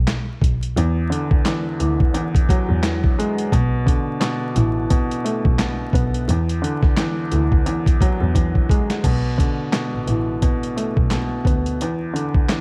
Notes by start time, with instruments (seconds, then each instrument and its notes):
0.07 snare, clap, closed hi-hat
0.41 double bass B1, kick, closed hi-hat
0.63 closed hi-hat
0.77 double bass E2, upright piano E2, closed hi-hat
1.10 upright piano D3, closed hi-hat
1.31 kick
1.45 upright piano E2, snare, clap, closed hi-hat
1.79 double bass D2, upright piano E3, closed hi-hat
2.00 kick
2.14 upright piano E2, closed hi-hat
2.35 kick, closed hi-hat
2.49 upright piano F#3, kick, closed hi-hat
2.69 double bass E2
2.83 upright piano E2, snare, clap, closed hi-hat
3.04 kick
3.19 upright piano G#3, closed hi-hat
3.38 closed hi-hat
3.52 double bass B1, upright piano B2, kick, closed hi-hat
3.86 upright piano D3, kick, closed hi-hat
4.20 upright piano B2, snare, clap, closed hi-hat
4.55 double bass A1, upright piano E3, closed hi-hat
4.90 upright piano B2, kick, closed hi-hat
5.11 closed hi-hat
5.24 upright piano A3, closed hi-hat
5.45 double bass B1, kick
5.59 upright piano B2, snare, clap, closed hi-hat
5.93 double bass B1, upright piano B3, kick, closed hi-hat
6.14 closed hi-hat
6.28 double bass E2, upright piano E2, closed hi-hat
6.49 closed hi-hat
6.62 upright piano D3, closed hi-hat
6.83 kick, snare
6.97 upright piano E2, snare, clap, closed hi-hat
7.31 double bass D2, upright piano E3, closed hi-hat
7.52 kick
7.66 upright piano E2, closed hi-hat
7.86 kick, closed hi-hat
8.01 upright piano F#3, kick, closed hi-hat
8.21 double bass E2
8.35 upright piano E2, kick, closed hi-hat
8.55 kick
8.70 upright piano G#3, kick, closed hi-hat
8.90 snare, closed hi-hat
9.04 double bass B1, upright piano B2, kick, closed hi-hat, crash
9.38 upright piano D3, kick, closed hi-hat
9.72 upright piano B2, snare, clap, closed hi-hat
9.93 double bass A1
10.07 double bass A1, upright piano E3, closed hi-hat
10.42 upright piano B2, kick, closed hi-hat
10.63 closed hi-hat
10.76 upright piano A3, closed hi-hat
10.97 double bass B1, kick
11.11 upright piano B2, snare, clap, closed hi-hat
11.45 double bass D2, upright piano B3, kick, closed hi-hat
11.66 closed hi-hat
11.81 upright piano E2, closed hi-hat
12.13 upright piano D3, closed hi-hat
12.35 kick
12.49 upright piano E2, snare, clap, closed hi-hat